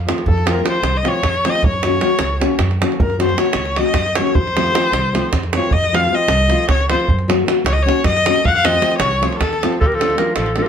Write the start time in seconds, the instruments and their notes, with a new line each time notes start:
Already playing: upright bass F2
0.07 nylon-string guitar F3 A3 C4 F4, davul high
0.18 davul high
0.26 upright bass F2, viola A4, davul low
0.38 davul high
0.45 nylon-string guitar F3 A3 C4 F4, davul high
0.51 viola A#4
0.62 nylon-string guitar F3 A3 C4 F4, davul high
0.69 viola C5
0.82 upright bass C2, davul high
0.97 viola D#5
1.03 nylon-string guitar F3 A3 C4 F4, davul high
1.08 viola C#5
1.22 upright bass F2, davul high, davul low
1.34 davul high
1.45 nylon-string guitar F3 A3 C4 F4, davul high
1.49 viola D#5
1.55 davul high
1.62 upright bass F#2, davul low
1.67 viola C#5
1.74 davul high
1.83 nylon-string guitar F#3 A#3 C#4 F#4, davul high
2.01 nylon-string guitar F#3 A#3 C#4 F#4, davul high
2.19 upright bass C#2, davul high
2.40 nylon-string guitar F#3 A#3 C#4 F#4, davul high
2.59 upright bass F#2, davul high, davul low
2.71 davul high
2.81 nylon-string guitar F#3 A#3 C#4 F#4, davul high
2.92 davul high
3.00 upright bass F#2, viola A#4, davul low
3.10 davul high
3.19 nylon-string guitar F#3 A#3 C#4 F#4, viola C5, davul high
3.29 davul high
3.36 nylon-string guitar F#3 A#3 C#4 F#4, viola C#5, davul high
3.46 davul high
3.53 upright bass C#2, davul high
3.65 davul high
3.76 nylon-string guitar F#3 A#3 C#4 F#4, viola D#5, davul high
3.86 davul high
3.94 upright bass F#2, davul high, davul low
4.06 davul high
4.15 nylon-string guitar F#3 A#3 C#4 F#4, viola C#5, davul high
4.27 davul high
4.35 upright bass F2, viola C5, davul low
4.47 davul high
4.56 nylon-string guitar F3 A3 C4 F4, davul high
4.73 nylon-string guitar F3 A3 C4 F4, davul high
4.92 upright bass C2, davul high
5.13 nylon-string guitar F3 A3 C4 F4, davul high
5.32 upright bass F2, davul high, davul low
5.43 davul high
5.53 nylon-string guitar F3 A3, viola C#5, davul high
5.57 nylon-string guitar C4 F4
5.64 davul high
5.71 upright bass F2, viola D#5, davul low
5.84 davul high
5.93 nylon-string guitar F3 A3 C4 F4, viola F5, davul high
6.10 nylon-string guitar F3 A3 C4 F4
6.15 viola D#5
6.28 upright bass C2, davul high
6.48 nylon-string guitar F3 A3 C4 F4, davul high
6.68 upright bass C#2, viola C#5, davul high, davul low
6.80 davul high
6.89 nylon-string guitar F3 A3 C4 F4, viola C5, davul high
7.00 davul high
7.08 upright bass F#2, davul low
7.19 davul high
7.28 nylon-string guitar F#3 A#3 C#4 F#4, davul high
7.46 nylon-string guitar F#3 A#3 C#4 F#4, davul high
7.64 upright bass C#2, viola C#5, davul high
7.73 viola D#5
7.83 nylon-string guitar F#3 A#3 C#4 F#4, viola C#5
7.89 davul high
8.04 upright bass F#2, viola D#5, davul high, davul low
8.17 davul high
8.25 nylon-string guitar F#3 A#3 C#4 F#4, davul high
8.35 davul high
8.44 upright bass F2, viola F5 F#5, davul low
8.56 viola F5, davul high
8.64 nylon-string guitar F3 A3 C4 F4, viola D#5, davul high
8.75 davul high
8.81 nylon-string guitar F3 A3 C4 F4, davul high
8.92 davul high
8.98 upright bass C2, viola C#5, davul high
9.11 davul high
9.21 nylon-string guitar F3 A3 C4 F4, davul high
9.33 davul high
9.38 upright bass D#2, viola A4, davul high, davul low
9.53 davul high
9.63 nylon-string guitar F3 A3 C4 F4, davul high
9.73 davul high
9.80 upright bass D2, viola F3, clarinet A4, davul low
9.86 viola G3, clarinet A#4
9.92 viola F3, clarinet A4, davul high
10.00 nylon-string guitar F3 A3 D4 F4, davul high
10.10 davul high
10.17 nylon-string guitar F3 A3 D4 F4, viola G3, clarinet A#4, davul high
10.33 upright bass A1, viola F3, clarinet A4, davul high
10.46 davul high
10.56 nylon-string guitar F3 A3 D4 F4, viola F3, clarinet A4, davul high
10.60 viola G3, clarinet A#4
10.65 viola F3